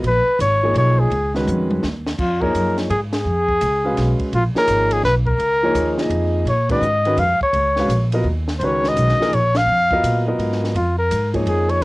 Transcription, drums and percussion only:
0.04 ride medium
0.40 hi-hat pedal medium
0.40 ride medium
0.75 ride medium
1.12 ride soft
1.35 snare soft
1.47 hi-hat pedal medium
1.47 high tom soft
1.71 high tom medium
1.83 snare medium
2.06 snare medium
2.19 kick medium
2.19 crash medium
2.42 kick soft
2.55 hi-hat pedal soft
2.55 ride medium
2.78 snare soft
2.78 ride soft
2.90 ride medium
3.13 snare medium
3.13 ride medium
3.48 kick soft
3.61 hi-hat pedal medium
3.61 ride medium
3.97 snare soft
3.97 ride medium
4.20 kick medium
4.20 ride soft
4.33 ride medium
4.55 snare soft
4.68 hi-hat pedal medium
4.68 ride medium
4.91 ride medium
5.04 snare soft
5.27 kick medium
5.40 ride medium
5.75 hi-hat pedal medium
5.75 ride medium
5.98 snare soft
6.10 ride medium
6.47 ride medium
6.69 kick medium
6.69 ride medium
6.82 hi-hat pedal medium
7.05 ride soft
7.17 ride medium
7.41 kick soft
7.53 ride soft
7.76 snare soft
7.90 hi-hat pedal medium
7.90 ride medium
8.12 ride medium
8.48 snare soft
8.61 ride medium
8.84 snare soft
8.97 hi-hat pedal medium
8.97 ride medium
9.09 snare soft
9.21 snare soft
9.33 ride medium
9.55 snare medium
9.55 ride medium
9.91 kick medium
10.04 hi-hat pedal medium
10.04 ride medium
10.39 ride medium
10.52 snare soft
10.64 snare soft
10.76 ride medium
11.11 hi-hat pedal medium
11.11 ride medium
11.34 kick soft
11.34 ride soft
11.47 ride medium
11.69 ride soft

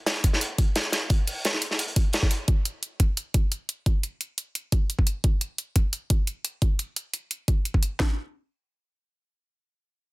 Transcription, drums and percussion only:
0.06 snare loud
0.06 closed hi-hat medium
0.16 closed hi-hat soft
0.24 kick medium
0.24 closed hi-hat medium
0.33 snare soft
0.41 closed hi-hat medium
0.58 kick loud
0.58 closed hi-hat medium
0.76 snare loud
0.76 closed hi-hat medium
0.92 snare medium
0.92 closed hi-hat medium
1.10 kick loud
1.10 closed hi-hat medium
1.27 closed hi-hat medium
1.27 open hi-hat medium
1.45 snare loud
1.45 closed hi-hat medium
1.54 snare soft
1.61 closed hi-hat medium
1.71 snare soft
1.79 closed hi-hat medium
1.88 closed hi-hat soft
1.96 kick loud
1.96 closed hi-hat medium
2.13 snare loud
2.13 closed hi-hat medium
2.23 kick medium
2.23 snare soft
2.31 closed hi-hat medium
2.48 kick loud
2.48 closed hi-hat medium
2.65 closed hi-hat medium
2.83 closed hi-hat medium
3.00 kick medium
3.00 closed hi-hat medium
3.17 closed hi-hat medium
3.34 kick loud
3.34 closed hi-hat medium
3.52 closed hi-hat medium
3.69 closed hi-hat medium
3.86 kick loud
3.86 closed hi-hat medium
4.03 closed hi-hat medium
4.21 closed hi-hat medium
4.38 closed hi-hat medium
4.55 closed hi-hat medium
4.72 kick loud
4.72 closed hi-hat medium
4.90 closed hi-hat medium
4.99 kick medium
5.07 closed hi-hat medium
5.24 kick loud
5.24 closed hi-hat medium
5.41 closed hi-hat medium
5.58 closed hi-hat medium
5.76 kick medium
5.76 closed hi-hat medium
5.93 closed hi-hat medium
6.10 kick loud
6.10 closed hi-hat medium
6.27 closed hi-hat medium
6.45 closed hi-hat medium
6.62 kick loud
6.62 closed hi-hat medium
6.79 closed hi-hat medium
6.96 closed hi-hat medium
7.14 closed hi-hat medium
7.31 closed hi-hat medium
7.48 kick loud
7.48 closed hi-hat medium
7.65 closed hi-hat medium
7.74 kick medium
7.83 closed hi-hat medium
8.00 kick loud
8.00 snare loud

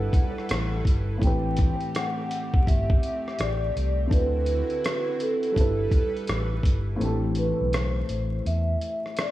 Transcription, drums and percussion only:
0.13 kick medium
0.13 closed hi-hat medium
0.38 cross-stick soft
0.49 cross-stick loud
0.49 closed hi-hat medium
0.85 kick medium
0.85 closed hi-hat medium
1.22 kick loud
1.22 closed hi-hat medium
1.57 kick medium
1.57 closed hi-hat medium
1.80 closed hi-hat soft
1.95 cross-stick loud
1.95 closed hi-hat medium
2.31 closed hi-hat medium
2.54 kick loud
2.67 kick medium
2.67 closed hi-hat medium
2.90 kick loud
3.03 closed hi-hat medium
3.28 cross-stick soft
3.39 cross-stick loud
3.39 closed hi-hat medium
3.77 closed hi-hat medium
4.11 kick loud
4.11 closed hi-hat medium
4.46 closed hi-hat medium
4.70 closed hi-hat soft
4.84 cross-stick loud
4.84 closed hi-hat medium
5.20 closed hi-hat medium
5.43 closed hi-hat soft
5.56 kick medium
5.56 closed hi-hat medium
5.91 kick medium
5.91 closed hi-hat medium
6.17 closed hi-hat soft
6.27 cross-stick loud
6.27 closed hi-hat medium
6.63 kick medium
6.63 closed hi-hat medium
7.01 closed hi-hat medium
7.35 closed hi-hat medium
7.73 cross-stick loud
7.73 closed hi-hat medium
8.09 closed hi-hat medium
8.46 closed hi-hat medium
8.81 closed hi-hat medium
9.06 cross-stick soft
9.17 cross-stick loud
9.17 closed hi-hat medium

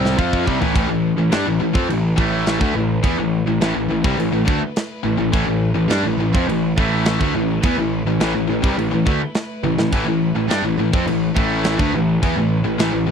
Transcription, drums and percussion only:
0.05 snare medium
0.19 kick medium
0.33 kick medium
0.47 kick medium
0.62 floor tom loud
0.76 kick loud
0.76 crash medium
1.32 snare loud
1.32 crash medium
1.75 kick loud
1.90 crash medium
2.18 kick loud
2.46 snare loud
2.46 crash medium
2.61 kick medium
3.04 kick loud
3.04 crash medium
3.61 snare loud
3.61 crash medium
4.04 kick loud
4.20 crash medium
4.48 kick loud
4.76 snare loud
4.76 crash medium
5.33 kick loud
5.33 crash medium
5.90 snare loud
5.90 crash medium
6.35 kick loud
6.49 crash medium
6.78 kick medium
7.05 snare loud
7.05 crash medium
7.21 kick loud
7.63 kick loud
7.63 crash medium
8.20 snare loud
8.20 crash medium
8.64 kick loud
8.79 crash medium
9.07 kick loud
9.35 snare loud
9.35 crash medium
9.63 high tom medium
9.79 snare loud
9.93 kick medium
9.93 crash medium
10.50 snare loud
10.50 crash medium
10.94 kick loud
11.07 crash medium
11.37 kick loud
11.64 snare loud
11.64 crash medium
11.79 kick loud
12.23 kick medium
12.23 crash medium
12.79 snare loud
12.79 crash medium

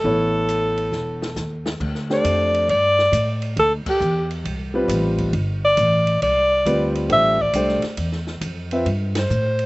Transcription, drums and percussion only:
0.49 hi-hat pedal medium
0.49 ride medium
0.78 ride soft
0.92 snare soft
1.22 snare medium
1.36 snare medium
1.36 hi-hat pedal medium
1.66 snare medium
1.80 kick medium
1.80 crash medium
1.95 snare soft
2.10 snare soft
2.25 hi-hat pedal medium
2.25 ride medium
2.54 ride soft
2.69 ride medium
2.99 snare soft
3.13 hi-hat pedal medium
3.13 ride medium
3.42 ride soft
3.57 ride medium
3.86 kick medium
3.86 crash medium
4.01 hi-hat pedal medium
4.31 ride soft
4.45 ride medium
4.89 hi-hat pedal medium
4.89 ride medium
5.18 kick medium
5.18 ride soft
5.33 ride medium
5.77 hi-hat pedal soft
5.77 ride medium
6.07 ride soft
6.22 ride medium
6.66 hi-hat pedal medium
6.66 ride medium
6.95 ride soft
7.10 ride medium
7.39 kick soft
7.53 hi-hat pedal medium
7.53 ride medium
7.68 snare soft
7.82 snare soft
7.82 ride soft
7.97 ride medium
8.12 snare soft
8.27 snare soft
8.41 hi-hat pedal medium
8.41 ride medium
8.71 ride soft
8.86 ride medium
9.15 snare medium
9.15 ride medium
9.30 hi-hat pedal soft
9.59 ride soft

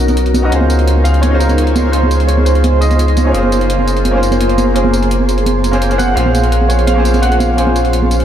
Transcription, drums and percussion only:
0.08 closed hi-hat soft
0.08 tambourine soft
0.08 high conga medium
0.17 closed hi-hat medium
0.17 tambourine soft
0.26 closed hi-hat soft
0.34 closed hi-hat medium
0.34 tambourine soft
0.34 high conga medium
0.52 closed hi-hat medium
0.61 high conga medium
0.70 closed hi-hat medium
0.70 tambourine medium
0.79 closed hi-hat soft
0.88 closed hi-hat medium
0.97 high conga medium
1.05 closed hi-hat medium
1.05 tambourine medium
1.14 closed hi-hat soft
1.23 closed hi-hat medium
1.23 high conga medium
1.40 closed hi-hat medium
1.40 tambourine medium
1.49 closed hi-hat soft
1.49 tambourine soft
1.49 high conga medium
1.58 closed hi-hat medium
1.67 closed hi-hat soft
1.76 closed hi-hat medium
1.76 tambourine soft
1.76 high conga medium
1.93 closed hi-hat medium
2.03 high conga medium
2.11 closed hi-hat medium
2.11 tambourine medium
2.20 closed hi-hat soft
2.29 closed hi-hat medium
2.38 high conga medium
2.46 closed hi-hat medium
2.46 tambourine medium
2.55 closed hi-hat soft
2.64 closed hi-hat medium
2.64 high conga medium
2.82 closed hi-hat medium
2.82 tambourine medium
2.91 closed hi-hat soft
2.91 tambourine soft
2.91 high conga medium
2.99 closed hi-hat medium
2.99 tambourine soft
3.08 closed hi-hat soft
3.17 closed hi-hat medium
3.17 tambourine medium
3.17 high conga medium
3.34 closed hi-hat medium
3.43 high conga medium
3.52 closed hi-hat medium
3.52 tambourine medium
3.61 closed hi-hat soft
3.70 closed hi-hat medium
3.79 high conga medium
3.88 closed hi-hat medium
3.88 tambourine medium
3.97 closed hi-hat soft
4.05 closed hi-hat medium
4.05 high conga medium
4.23 closed hi-hat medium
4.23 tambourine medium
4.32 closed hi-hat soft
4.32 tambourine soft
4.32 high conga medium
4.41 closed hi-hat medium
4.49 closed hi-hat soft
4.58 closed hi-hat medium
4.58 tambourine medium
4.58 high conga medium
4.76 closed hi-hat medium
4.85 high conga medium
4.94 closed hi-hat medium
4.94 tambourine medium
5.03 closed hi-hat soft
5.11 closed hi-hat medium
5.20 high conga medium
5.29 closed hi-hat medium
5.29 tambourine medium
5.38 closed hi-hat soft
5.46 closed hi-hat medium
5.46 high conga medium
5.64 closed hi-hat medium
5.64 tambourine soft
5.73 closed hi-hat soft
5.73 tambourine soft
5.73 high conga medium
5.82 closed hi-hat medium
5.82 tambourine soft
5.91 closed hi-hat soft
5.91 tambourine soft
5.99 closed hi-hat medium
5.99 tambourine medium
5.99 high conga medium
6.17 closed hi-hat medium
6.26 high conga medium
6.35 closed hi-hat medium
6.35 tambourine medium
6.44 closed hi-hat soft
6.52 closed hi-hat medium
6.61 high conga medium
6.70 closed hi-hat medium
6.70 tambourine medium
6.79 closed hi-hat soft
6.87 closed hi-hat medium
6.87 high conga medium
7.05 closed hi-hat medium
7.05 tambourine soft
7.14 closed hi-hat soft
7.14 tambourine soft
7.14 high conga medium
7.23 closed hi-hat medium
7.32 closed hi-hat soft
7.40 closed hi-hat medium
7.40 tambourine soft
7.40 high conga medium
7.58 closed hi-hat medium
7.67 high conga medium
7.76 closed hi-hat medium
7.76 tambourine medium
7.85 closed hi-hat soft
7.93 closed hi-hat medium
8.03 high conga medium
8.11 closed hi-hat medium
8.11 tambourine medium
8.20 closed hi-hat soft

